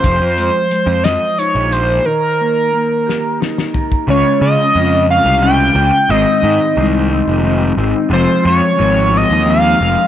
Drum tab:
HH |x-x-x-x-x-x-|------------|------------|------------|
SD |------o-----|------o-oo--|------------|------------|
FT |------------|----------o-|------------|------------|
BD |o-----------|-----------o|------------|------------|

HH |------------|
SD |------------|
FT |------------|
BD |------------|